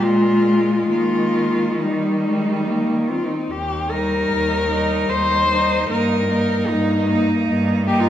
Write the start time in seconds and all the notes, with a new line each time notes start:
Already playing: A#2
0.03 G#3 F4
0.90 D#3 A#3 F4
1.81 G3 D#4
2.26 G#3
2.68 A#3
3.10 C4 F4
3.25 D#4
3.51 D#2 G4
3.90 G3 D#4 A#4
4.30 D#2
4.70 G3 D#4
5.09 D#2 C5
5.50 G3 D#4
5.89 G2 A#3 D#4 A#4
6.29 A#3 D#4
6.69 G2 D#4
7.10 A#3 D#4
7.49 G2
7.86 A#3 D#4 G4
8.00 F4